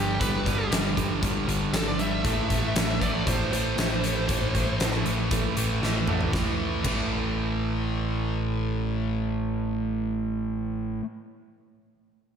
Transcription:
Already playing: picked electric bass G1, distorted electric guitar G2 D3 G3, lead electric guitar G4
0.20 picked electric bass G1, distorted electric guitar G2 D3 G3, lead electric guitar B4, kick, closed hi-hat
0.45 picked electric bass G1, distorted electric guitar G2 D3 G3, kick, closed hi-hat
0.71 picked electric bass G1, distorted electric guitar G2 D3 G3, snare, closed hi-hat
0.96 picked electric bass G1, distorted electric guitar G2 D3 G3, kick, closed hi-hat
1.22 picked electric bass G1, distorted electric guitar G2 D3 G3, kick, closed hi-hat
1.47 picked electric bass G1, distorted electric guitar G2 D3 G3, closed hi-hat
1.73 picked electric bass G#1, distorted electric guitar G2 D3 G3, lead electric guitar A4, snare, closed hi-hat
1.88 lead electric guitar D5
1.98 distorted electric guitar G2 D3 G3, lead electric guitar E5, closed hi-hat
2.24 picked electric bass A1, distorted electric guitar A2 E3 A3, kick, closed hi-hat
2.49 picked electric bass A1, distorted electric guitar A2 E3 A3, kick, closed hi-hat
2.75 picked electric bass A1, distorted electric guitar A2 E3 A3, snare, closed hi-hat
3.00 picked electric bass A1, distorted electric guitar A2 E3 A3, lead electric guitar D5, kick, closed hi-hat
3.26 picked electric bass A1, distorted electric guitar A2 E3 A3, lead electric guitar C5, kick, closed hi-hat
3.51 picked electric bass A1, distorted electric guitar A2 E3 A3, lead electric guitar C5, closed hi-hat
3.77 picked electric bass A1, distorted electric guitar A2 E3 A3, snare, closed hi-hat
4.03 distorted electric guitar A2 E3 A3, closed hi-hat
4.29 picked electric bass A1, distorted electric guitar A2 E3 A3, kick, closed hi-hat
4.55 picked electric bass A1, distorted electric guitar A2 E3 A3, kick, closed hi-hat
4.80 picked electric bass A1, distorted electric guitar A2 E3 A3, snare, closed hi-hat
5.06 picked electric bass A1, distorted electric guitar A2 E3 A3, closed hi-hat
5.31 picked electric bass A1, distorted electric guitar A2 E3 A3, kick, closed hi-hat
5.56 picked electric bass A1, distorted electric guitar A2 E3 A3, closed hi-hat
5.82 picked electric bass A1, distorted electric guitar A2 E3 A3, snare
6.07 distorted electric guitar A2 E3 A3, mid tom
6.21 floor tom
6.32 picked electric bass A1, distorted electric guitar A2 E3 A3, kick, snare
6.83 picked electric bass A1, distorted electric guitar A2 E3, kick, crash
6.87 distorted electric guitar A3

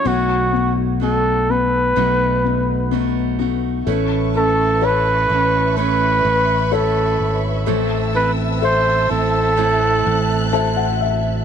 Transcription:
0.04 fingered electric bass B1, steel-string acoustic guitar B2 F#3 A3 D#4 F#4, felt piano B3, flugelhorn F#4
0.53 felt piano B3
1.00 steel-string acoustic guitar F#3 A3 D#4 F#4, felt piano B3, flugelhorn A4
1.49 felt piano B3, flugelhorn B4
1.96 fingered electric bass B1, steel-string acoustic guitar B2 F#3 A3 D#4 F#4, felt piano B3
2.44 felt piano B3
2.91 steel-string acoustic guitar F#3 A3 D#4 F#4, felt piano B3
3.39 steel-string acoustic guitar A3 D#4 F#4, felt piano B3
3.85 fingered electric bass A1, felt piano A3, steel-string acoustic guitar A3 C#4 E4, string section B4 E5 A5 C#6
3.89 steel-string acoustic guitar B4
4.34 steel-string acoustic guitar C#4 E4 B4, flugelhorn A4
4.81 steel-string acoustic guitar A3 C#4 E4 B4, felt piano A4 B4 C#5, flugelhorn B4
5.29 fingered electric bass A1, steel-string acoustic guitar C#4 E4 B4
5.76 steel-string acoustic guitar A3 C#4 E4 B4, flugelhorn B4, string section B5
6.25 fingered electric bass A1
6.72 steel-string acoustic guitar A3 C#4 E4 B4, felt piano A4 B4 C#5, flugelhorn A4
7.20 fingered electric bass G#1
7.66 fingered electric bass A1, steel-string acoustic guitar A2 E3 A3 C4 E4 A4, felt piano A3, string section C4 A5 E6
8.13 steel-string acoustic guitar A3 C4 E4 A4, flugelhorn B4
8.61 steel-string acoustic guitar A3 C4 E4 A4, felt piano A4 C5 E5, flugelhorn C5
9.09 fingered electric bass A1, steel-string acoustic guitar A3 C4 E4 A4, flugelhorn A4
9.57 steel-string acoustic guitar A2 E3 A3 C4 E4 A4, string section F#6
10.06 fingered electric bass A1
10.52 steel-string acoustic guitar A3 C4 E4 A4, felt piano A4 C5 E5 A5
10.76 felt piano F#5
11.01 felt piano E5

